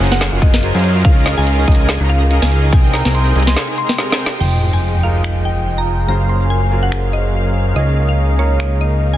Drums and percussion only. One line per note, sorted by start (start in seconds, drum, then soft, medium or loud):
0.00 closed hi-hat soft
0.04 closed hi-hat medium
0.07 closed hi-hat medium
0.12 snare medium
0.21 snare loud
0.21 closed hi-hat medium
0.42 kick loud
0.42 closed hi-hat medium
0.54 snare medium
0.63 closed hi-hat medium
0.75 closed hi-hat soft
0.79 closed hi-hat medium
0.84 closed hi-hat medium
1.05 kick loud
1.05 closed hi-hat medium
1.26 snare medium
1.26 closed hi-hat medium
1.47 closed hi-hat medium
1.68 kick medium
1.68 closed hi-hat medium
1.72 closed hi-hat medium
1.75 closed hi-hat medium
1.89 snare loud
1.89 closed hi-hat medium
2.10 closed hi-hat medium
2.31 closed hi-hat medium
2.42 snare medium
2.42 closed hi-hat medium
2.47 closed hi-hat medium
2.52 closed hi-hat medium
2.73 kick loud
2.73 closed hi-hat medium
2.94 snare medium
2.94 closed hi-hat medium
3.05 snare medium
3.15 closed hi-hat medium
3.36 closed hi-hat medium
3.40 closed hi-hat medium
3.43 closed hi-hat medium
3.47 snare medium
3.57 snare loud
3.57 closed hi-hat medium
3.78 closed hi-hat medium
3.89 snare medium
3.98 snare medium
3.98 closed hi-hat medium
4.10 snare medium
4.10 closed hi-hat medium
4.15 closed hi-hat medium
4.19 closed hi-hat medium
4.26 snare loud
4.40 crash medium
5.24 finger snap medium
6.92 finger snap medium
8.60 finger snap medium